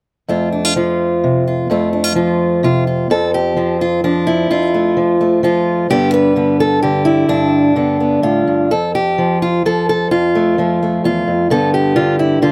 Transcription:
0.28 F2 A3 F4
0.52 D4
0.65 F4
0.76 F3 F4
1.24 C3
1.47 F4
1.70 F2 A3 F4
1.93 D4
2.04 F4
2.15 F3 F4
2.63 C3 F4
2.87 F4
3.10 F2 F3 C4 A4
3.34 G4
3.56 F3 C4
3.81 F4
4.04 F3 D4
4.27 E4
4.50 F2 F4
4.74 A3
4.97 F3
5.21 A3
5.43 F3 F4
5.90 G2 D3 G3 B3 G4
6.14 B4
6.36 D3 B3
6.60 A4
6.83 D3 G4
7.05 E4
7.29 G2 D4
7.76 D3 B3
8.00 B3
8.23 A2 F4
8.48 G2
8.71 F2 A4
8.95 G4
9.18 F3
9.42 F4
9.65 F3 A4
9.89 A4
10.11 F2 F4
10.35 A3
10.58 F3 A3
10.83 A3
11.04 E2 F4
11.27 F2
11.50 G2 D3 B3 A4
11.74 G4
11.96 D3 F4
12.19 E4
12.42 D3 F4

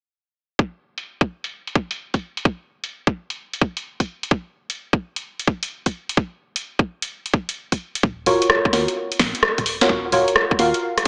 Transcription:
0.59 kick
0.98 closed hi-hat
1.21 kick
1.44 closed hi-hat
1.67 closed hi-hat
1.75 kick
1.91 closed hi-hat
2.14 kick, closed hi-hat
2.37 closed hi-hat
2.45 kick
2.84 closed hi-hat
3.07 kick
3.30 closed hi-hat
3.53 closed hi-hat
3.61 kick
3.77 closed hi-hat
4.00 kick, closed hi-hat
4.23 closed hi-hat
4.31 kick
4.70 closed hi-hat
4.93 kick
5.16 closed hi-hat
5.39 closed hi-hat
5.47 kick
5.63 closed hi-hat
5.86 kick, closed hi-hat
6.09 closed hi-hat
6.17 kick
6.56 closed hi-hat
6.79 kick
7.02 closed hi-hat
7.26 closed hi-hat
7.34 kick
7.49 closed hi-hat
7.72 kick, closed hi-hat
7.95 closed hi-hat
8.03 D#1, kick
8.26 D#1 F4 F#4 A#4 C#5, open hi-hat
8.42 closed hi-hat
8.50 cross-stick
8.65 kick
8.73 D#2 F4 F#4 A#4 C#5, snare, open hi-hat
8.88 closed hi-hat
9.12 closed hi-hat
9.19 A#1, kick, snare, open hi-hat
9.35 closed hi-hat
9.43 cross-stick
9.58 D#1, kick, closed hi-hat
9.66 open hi-hat
9.81 F4 F#4 A#4 C#5, snare, closed hi-hat
9.89 D#1, kick
10.12 D#1 F4 F#4 A#4 C#5, open hi-hat
10.28 closed hi-hat
10.36 cross-stick
10.51 kick
10.59 D#2 F4 F#4 A#4 F5, open hi-hat
10.74 closed hi-hat
10.98 cross-stick, closed hi-hat

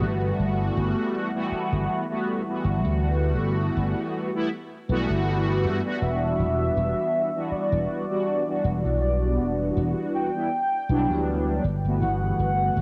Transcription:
Already playing: E3 G3 A3 B3 F#4
0.02 G1
0.39 G1
0.77 G1
1.34 E3 G3 A3 B3 F#4
1.52 muted slap bass stroke
1.72 G1
2.09 E3 G3 A3 B3 F#4
2.46 E3 G3 A3 B3 F#4
2.65 G1
2.85 D2
3.39 G1
3.77 G1
4.34 E3 G3 A3 B3 E4
4.88 B1 E3 G3 A3 B3 F#4
5.10 G1
5.64 G2
5.83 E3 G3 B3 D4 F#4
6.02 E1 E5
6.39 E1
6.77 E1
7.34 E3 G3 B3 D4 F#4
7.51 D5, muted slap bass stroke
7.72 E1
8.09 E3 G3 B3 D4 F#4
8.46 E3 G3 B3 D4 F#4
8.64 E1
8.85 B1
9.02 D5
9.39 E1
9.77 E1
10.14 G5
10.34 E3 G3 B3 D4 E4
10.89 B1 E3 F#3 G3 B3 D4
11.10 D2
11.64 G1
11.83 G1 E3 G3 A3 B3 F#4
12.02 G1 F#5
12.39 G1
12.77 G1

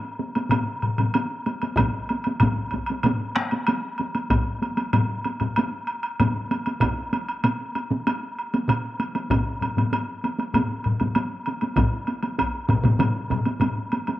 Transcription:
0.20 taiko high
0.35 taiko high, high woodblock
0.50 taiko low-mid, taiko high, high woodblock
0.82 taiko low-mid, high woodblock
0.98 taiko low-mid, taiko high, high woodblock
1.14 taiko high, high woodblock
1.46 taiko high, high woodblock
1.62 taiko high, high woodblock
1.77 taiko, taiko low-mid, taiko mid, taiko high, high woodblock
2.09 taiko high, high woodblock
2.24 taiko high, high woodblock
2.40 taiko, taiko low-mid, taiko mid, taiko high, high woodblock
2.71 taiko, taiko high, high woodblock
2.86 taiko high, high woodblock
3.03 taiko low-mid, taiko mid, taiko high, high woodblock
3.35 taiko rim, taiko high, high woodblock
3.51 taiko high, high woodblock
3.67 taiko high, high woodblock
3.98 taiko high, high woodblock
4.15 taiko high, high woodblock
4.30 taiko, taiko low-mid, taiko high, high woodblock
4.62 taiko high, high woodblock
4.77 taiko high, high woodblock
4.93 taiko low-mid, taiko high, high woodblock
5.24 taiko high, high woodblock
5.40 taiko low-mid, taiko high, high woodblock
5.56 taiko high, high woodblock
5.87 high woodblock
6.03 high woodblock
6.20 taiko low-mid, taiko high, high woodblock
6.51 taiko high, high woodblock
6.66 taiko high, high woodblock
6.80 taiko, taiko mid, taiko high, high woodblock
7.13 taiko high, high woodblock
7.28 high woodblock
7.44 taiko mid, taiko high, high woodblock
7.75 taiko high, high woodblock
7.91 taiko mid, taiko high
8.07 taiko high, high woodblock
8.39 high woodblock
8.54 taiko high, high woodblock
8.68 taiko mid, taiko high, high woodblock
9.00 taiko high, high woodblock
9.15 taiko high, high woodblock
9.30 taiko, taiko low-mid, taiko high, high woodblock
9.61 taiko low-mid, taiko high, high woodblock
9.77 taiko low-mid, taiko high, high woodblock
9.93 taiko high, high woodblock
10.24 taiko high, high woodblock
10.39 taiko high, high woodblock
10.54 taiko low-mid, taiko high, high woodblock
10.84 taiko low-mid, high woodblock
11.00 taiko low-mid, taiko high, high woodblock
11.15 taiko high, high woodblock
11.46 taiko high, high woodblock
11.61 taiko high, high woodblock
11.76 taiko, taiko low-mid, taiko mid, taiko high, high woodblock
12.07 taiko high, high woodblock
12.23 taiko high, high woodblock
12.38 taiko, taiko high, high woodblock
12.69 taiko, taiko low-mid, taiko mid, taiko high, high woodblock
12.84 taiko low-mid, taiko mid, taiko high, high woodblock
12.99 taiko low-mid, taiko mid, taiko high, high woodblock
13.30 taiko low-mid, taiko mid, taiko high, high woodblock
13.46 taiko high, high woodblock
13.61 taiko low-mid, taiko mid, taiko high, high woodblock
13.92 taiko high, high woodblock
14.07 taiko high, high woodblock

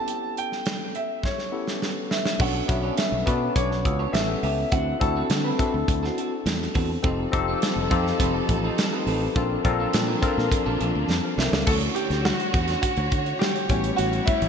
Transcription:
Already playing: B3 C#4 E4 G4 A4 A5
0.08 closed hi-hat
0.37 G5, closed hi-hat
0.52 snare
0.66 snare, closed hi-hat
0.95 E5, closed hi-hat
1.23 C#5, kick, snare
1.38 snare
1.52 B3 C#4 E4 G4 A4
1.68 snare
1.82 snare
2.11 E5, snare
2.25 snare
2.39 B1 B3 C#4 D4 F#4 A4 C#5 F#5, kick, crash
2.55 muted clean electric guitar stroke
2.68 B1 B3 C#4 D4 F#4 B4 E5, muted clean electric guitar stroke, kick, closed hi-hat
2.83 D4 A4 C#5
2.97 E5, snare, closed hi-hat
3.12 B1, muted clean electric guitar stroke
3.26 B2 B3 C#4 D4 F#4 A4 B4 C#5 D5, kick, closed hi-hat
3.42 muted clean electric guitar stroke
3.56 B1 D4 A4 C#5 D5, kick, closed hi-hat
3.71 muted clean electric guitar stroke, snare
3.85 C#2, muted clean electric guitar stroke, kick, closed hi-hat
3.99 D4 A4 C#5
4.12 A1 B3 C#4 E4 G4 A4 E5, muted clean electric guitar stroke, snare, closed hi-hat
4.29 C#4 G4 A4
4.43 C#2 C#4 G4 A4 E5, open hi-hat
4.58 muted clean electric guitar stroke
4.71 D2 C4 D4 E4 F#4 A4 F#5, kick, closed hi-hat
4.87 muted clean electric guitar stroke
5.00 D2 C4 D4 E4 F#4 A4 A5, muted clean electric guitar stroke, kick, closed hi-hat
5.16 C4 F#4 A4
5.30 D3, muted clean electric guitar stroke, snare, closed hi-hat
5.44 C4 F#4 B4
5.58 C4 D4 E4 F#4 A4 B4, kick, closed hi-hat
5.74 D2, muted clean electric guitar stroke
5.88 D2, muted clean electric guitar stroke, kick, closed hi-hat
6.03 C4 F#4 A4, snare
6.18 C4 F#4 A4, closed hi-hat
6.32 muted clean electric guitar stroke
6.46 E2, muted clean electric guitar stroke, snare, closed hi-hat
6.61 muted clean electric guitar stroke, snare
6.75 E2 C4 F#4 A4, kick, open hi-hat
6.90 muted clean electric guitar stroke
7.02 F1 F3 C4 D#4 F4 G4 A4, kick, closed hi-hat
7.19 muted clean electric guitar stroke
7.32 F1 C4 D#4 F4 G4 A4, muted clean electric guitar stroke, kick, closed hi-hat
7.48 C4 D#4 A4
7.62 snare, closed hi-hat
7.76 F1, muted clean electric guitar stroke
7.91 F2 C4 D#4 F4 G4 A4, kick, closed hi-hat
8.06 muted clean electric guitar stroke, snare
8.19 F1 C4 D#4 B4, kick, closed hi-hat
8.34 muted clean electric guitar stroke
8.49 A1, muted clean electric guitar stroke, kick, closed hi-hat
8.64 C4 D#4 A4
8.78 D#4 A4, muted clean electric guitar stroke, snare, closed hi-hat
8.92 C4 D#4 F4 A4 B4
9.06 A1 C4 D#4 G4 A4 C5, open hi-hat
9.21 D#4 A4, muted clean electric guitar stroke
9.36 A#1 F3 A#3 C4 D4 F4 A4 A#4, kick, closed hi-hat
9.50 muted clean electric guitar stroke
9.65 A#1 C4 D4 F4 A4 A#4, muted clean electric guitar stroke, kick, closed hi-hat
9.80 D4 F4 A4
9.93 A#2, muted clean electric guitar stroke, snare, closed hi-hat
10.08 D4 F4 A#4
10.22 C4 D4 F4 A4 A#4, kick, closed hi-hat
10.37 A#2, muted clean electric guitar stroke, snare
10.52 muted clean electric guitar stroke, kick, closed hi-hat
10.66 A#1 D4 F4 A4
10.80 A#1 D4 F4 A4, closed hi-hat
10.95 D2, muted clean electric guitar stroke
11.09 F2, muted clean electric guitar stroke, snare
11.24 C5 F5, muted clean electric guitar stroke
11.38 C2 D4 F4 A4 A#4 E5, snare
11.52 C#2 A4 D5, muted clean electric guitar stroke, snare
11.66 D2 D3 A3 C#4 D4 E4 F#4 A4 C#5, kick, crash
11.81 closed hi-hat
11.95 G4, closed hi-hat
12.10 D2, snare, closed hi-hat
12.25 F#4, snare
12.40 closed hi-hat
12.54 E2, kick, closed hi-hat
12.68 snare, closed hi-hat
12.82 F#4, kick, closed hi-hat
12.97 D2, closed hi-hat
13.12 D3, kick, closed hi-hat
13.26 closed hi-hat
13.39 G4, snare
13.56 closed hi-hat
13.69 A1 G3 A3 B3 C#4 E4 F#4, kick, closed hi-hat
13.84 closed hi-hat
13.96 A1 F#4, closed hi-hat
14.13 closed hi-hat
14.26 E4, kick, closed hi-hat
14.42 A1, closed hi-hat

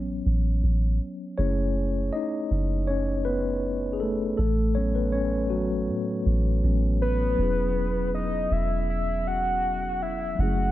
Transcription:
Already playing: A1 F#3 B3 C#4 C#5
0.26 A1
0.63 A1
1.38 F#1 A3 C#4 E4 G#4 C#5
2.13 D#4 D#5
2.51 F#1
2.87 C#4 C#5
3.25 B3 B4
3.93 G#4
4.00 A3 A4
4.37 A1 A3 A4
4.75 F#3 B3 C#4 C#5
4.95 B3 B4
5.12 C#4 C#5
5.50 F#3 F#4
5.88 A2
6.26 A1
6.63 A1 F#3 B3 C#4
7.02 B4
7.34 E1 F#3 B3
7.39 C#4 E4
7.43 G#4
8.14 D#5
8.51 E1 E5
8.90 E5
9.27 F#5
10.02 E5
10.35 F#1 F#3 G#3 C#4
10.40 A3 E4 G#4 F#5

